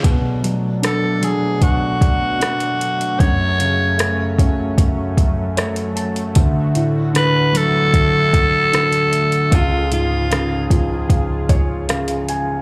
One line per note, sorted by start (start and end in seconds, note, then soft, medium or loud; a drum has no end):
0.03 3.16 B2 medium
0.03 3.17 B2 medium
0.03 6.32 F#3 medium
0.03 9.47 A3 medium
0.03 3.17 D4 medium
0.03 kick medium
0.03 closed hi-hat medium
0.43 1.20 F#3 soft
0.43 closed hi-hat medium
0.82 2.37 D4 soft
0.82 1.25 A4 medium
0.82 cross-stick medium
0.82 closed hi-hat medium
1.21 2.76 F#3 soft
1.21 1.64 G#4 medium
1.21 closed hi-hat medium
1.62 3.21 F#4 medium
1.62 kick medium
1.62 closed hi-hat medium
2.01 kick medium
2.01 closed hi-hat medium
2.40 3.17 D4 soft
2.40 cross-stick medium
2.40 closed hi-hat medium
2.60 closed hi-hat soft
2.81 closed hi-hat medium
3.01 closed hi-hat soft
3.19 6.31 F#2 medium
3.19 6.33 F#2 medium
3.19 6.33 C#4 medium
3.19 4.38 C#5 medium
3.19 kick medium
3.19 closed hi-hat medium
3.59 5.13 C#3 soft
3.59 closed hi-hat medium
3.98 5.52 A3 soft
3.98 cross-stick loud
3.98 closed hi-hat medium
4.38 5.92 C#4 soft
4.38 kick medium
4.38 closed hi-hat medium
4.78 kick medium
4.78 closed hi-hat medium
5.17 kick medium
5.17 closed hi-hat medium
5.57 6.34 A3 soft
5.57 5.94 C#5 medium
5.57 cross-stick medium
5.57 closed hi-hat medium
5.76 closed hi-hat soft
5.96 6.33 A5 medium
5.96 closed hi-hat medium
6.16 closed hi-hat soft
6.35 9.48 D2 medium
6.35 9.49 D2 medium
6.35 9.49 D3 medium
6.35 9.49 F#4 medium
6.35 kick medium
6.35 closed hi-hat medium
6.75 8.29 A2 soft
6.75 closed hi-hat medium
7.14 8.69 D3 soft
7.14 7.59 B4 medium
7.14 cross-stick medium
7.14 closed hi-hat medium
7.53 9.08 F#3 soft
7.53 closed hi-hat medium
7.57 9.56 A4 loud
7.94 kick medium
7.94 closed hi-hat medium
8.34 kick medium
8.34 closed hi-hat medium
8.73 9.49 D3 soft
8.73 cross-stick medium
8.73 closed hi-hat medium
8.92 closed hi-hat soft
9.13 closed hi-hat medium
9.32 closed hi-hat soft
9.51 12.62 C#2 medium
9.51 12.62 C#3 medium
9.51 12.62 F4 medium
9.51 9.93 F4 medium
9.51 12.62 G#4 medium
9.51 kick medium
9.51 closed hi-hat medium
9.92 11.45 G#2 soft
9.92 10.67 F4 medium
9.92 closed hi-hat medium
10.30 11.84 C#3 soft
10.30 cross-stick medium
10.30 closed hi-hat medium
10.70 12.24 F3 soft
10.70 kick medium
10.70 closed hi-hat medium
11.10 kick medium
11.10 closed hi-hat medium
11.49 11.86 C#5 medium
11.49 kick medium
11.49 closed hi-hat medium
11.89 12.62 C#3 soft
11.89 12.26 F5 medium
11.89 cross-stick medium
11.89 closed hi-hat medium
12.08 closed hi-hat soft
12.29 12.62 G#5 medium
12.29 closed hi-hat medium